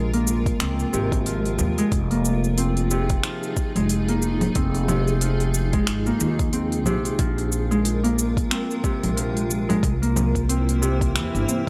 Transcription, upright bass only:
Already playing: A#1
0.60 C#2
0.94 G#1
1.60 D#2
1.92 F1
3.76 F1
4.56 F1
5.88 G#1
6.20 D#2
6.86 A#1
7.19 A#1
9.04 A#1
9.83 C2
11.15 E2
11.35 G1

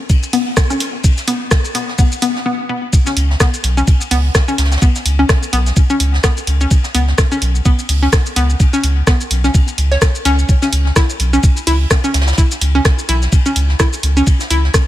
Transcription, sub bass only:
0.33 C#2
0.80 C#2
1.28 C#2
1.75 B1
2.22 C#2
3.17 C#2
3.64 B1
4.11 C#2
4.58 C#2
5.05 C#2
5.53 B1
6.00 C#2
6.47 C#2
6.95 C#2
7.42 B1
7.89 C#2
8.36 C#2
8.83 C#2
9.31 B1
9.78 C#2
10.25 C#2
10.72 C#2
11.20 B1
11.67 C#2
12.14 C#2
12.61 C#2
13.09 B1
13.56 C#2
14.03 C#2
14.50 C#2

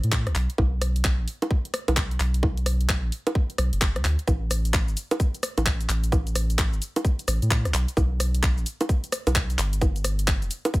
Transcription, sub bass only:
0.04 A2
0.27 C2
0.35 B1
0.58 B1
1.19 A1
1.88 B1
2.20 B1
3.04 A1
3.58 B1
3.73 F#1
3.96 D2
4.04 D2
4.28 A1
4.88 G1
5.57 A1
5.89 A1
6.73 G1
7.28 A1
7.42 A2
7.65 C2
7.74 B1
7.97 B1
8.57 A1
9.27 B1
9.58 G1
10.42 E1

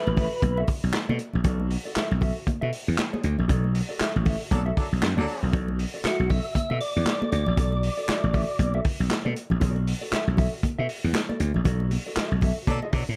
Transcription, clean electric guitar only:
Already playing: F#4
0.07 muted clean electric guitar stroke
0.17 F#4 A4 E5
0.32 muted clean electric guitar stroke
0.42 muted clean electric guitar stroke
0.58 F#4 A4 E5
0.68 muted clean electric guitar stroke
0.84 muted clean electric guitar stroke
0.93 muted clean electric guitar stroke
1.09 F#4 A4 D5
1.19 muted clean electric guitar stroke
1.35 muted clean electric guitar stroke
1.45 F#4 A4 D5
1.60 muted clean electric guitar stroke
1.70 muted clean electric guitar stroke
1.85 F#4 A4 D5
1.96 F#4 A4 E5
2.11 muted clean electric guitar stroke
2.21 F#4 A4 E5
2.37 muted clean electric guitar stroke
2.47 muted clean electric guitar stroke
2.61 F#4 A4 E5
2.72 muted clean electric guitar stroke
2.87 muted clean electric guitar stroke
2.98 muted clean electric guitar stroke
3.13 F#4 A4 D5
3.23 muted clean electric guitar stroke
3.38 muted clean electric guitar stroke
3.48 F#4 A4 D5
3.64 muted clean electric guitar stroke
3.74 muted clean electric guitar stroke
3.89 F#4 A4 D5
3.99 F#4 A4 E5
4.15 muted clean electric guitar stroke
4.25 F#4 A4 E5
4.41 muted clean electric guitar stroke
4.51 muted clean electric guitar stroke
4.66 F#4 A4 E5
4.77 muted clean electric guitar stroke
4.92 muted clean electric guitar stroke
5.01 muted clean electric guitar stroke
5.17 F#4 A4 D5
5.27 muted clean electric guitar stroke
5.43 muted clean electric guitar stroke
5.53 F#4 A4 D5
5.68 muted clean electric guitar stroke
5.78 muted clean electric guitar stroke
5.94 F#4 A4 D5
6.04 F#4 A4 E5
6.19 muted clean electric guitar stroke
6.29 F#4 A4 E5
6.44 muted clean electric guitar stroke
6.55 muted clean electric guitar stroke
6.70 F#4 A4 E5
6.81 muted clean electric guitar stroke
6.96 muted clean electric guitar stroke
7.07 muted clean electric guitar stroke
7.22 F#4 A4 D5
7.32 muted clean electric guitar stroke
7.47 muted clean electric guitar stroke
7.57 F#4 A4 D5
7.72 muted clean electric guitar stroke
7.82 muted clean electric guitar stroke
7.98 F#4 A4 D5
8.08 F#4 A4 E5
8.23 muted clean electric guitar stroke
8.33 F#4 A4 E5
8.49 muted clean electric guitar stroke
8.59 muted clean electric guitar stroke
8.75 F#4 A4 E5
8.85 muted clean electric guitar stroke
9.00 muted clean electric guitar stroke
9.10 muted clean electric guitar stroke
9.25 F#4 A4 D5
9.36 muted clean electric guitar stroke
9.51 muted clean electric guitar stroke
9.60 F#4 A4 D5
9.76 muted clean electric guitar stroke
9.86 muted clean electric guitar stroke
10.01 F#4 A4 D5
10.11 F#4 A4 E5
10.28 muted clean electric guitar stroke
10.37 F#4 A4 E5
10.53 muted clean electric guitar stroke
10.64 muted clean electric guitar stroke
10.79 F#4 A4 E5
10.89 muted clean electric guitar stroke
11.04 muted clean electric guitar stroke
11.14 muted clean electric guitar stroke
11.29 F#4 A4 D5
11.40 muted clean electric guitar stroke
11.55 muted clean electric guitar stroke
11.65 F#4 A4 D5
11.81 muted clean electric guitar stroke
11.91 muted clean electric guitar stroke
12.06 F#4 A4 D5
12.16 F#4 A4 E5
12.32 muted clean electric guitar stroke
12.42 F#4 A4 E5
12.58 muted clean electric guitar stroke
12.68 muted clean electric guitar stroke
12.83 F#4 A4 E5
12.94 muted clean electric guitar stroke
13.09 muted clean electric guitar stroke

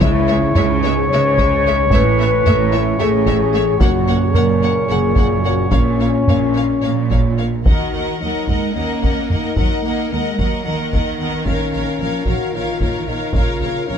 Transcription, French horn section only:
0.00 E4
0.82 G#4
1.08 C#5
1.92 B4
2.74 E4
3.00 G#4
3.79 F#4
4.32 A#4
4.88 G#4
5.42 F#4
5.69 C#4
7.66 F#4
8.20 D#4
8.72 C#4
9.30 D#4
10.12 A#3
10.64 A#3
11.19 B3
11.44 C#4
12.25 F#4
12.52 F4
13.06 D#4
13.35 F4
13.87 C#4

